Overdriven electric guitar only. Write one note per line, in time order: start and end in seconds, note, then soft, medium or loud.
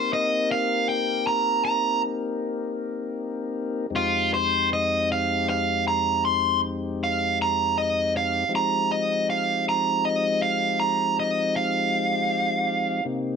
0.13 0.48 D#5 medium
0.52 0.86 F5 medium
0.89 1.24 G5 medium
1.27 1.62 A#5 medium
1.65 2.01 A#5 medium
3.96 4.31 F4 medium
4.34 4.69 C5 medium
4.73 5.08 D#5 medium
5.12 5.46 F5 medium
5.50 5.84 F5 medium
5.88 6.22 A#5 medium
6.25 6.60 C6 medium
7.04 7.37 F5 medium
7.42 7.75 A#5 medium
7.78 8.12 D#5 medium
8.17 8.51 F5 medium
8.55 8.89 A#5 medium
8.92 9.26 D#5 medium
9.30 9.64 F5 medium
9.69 10.03 A#5 medium
10.05 10.40 D#5 medium
10.42 10.78 F5 medium
10.80 11.15 A#5 medium
11.20 11.54 D#5 medium
11.56 13.03 F5 medium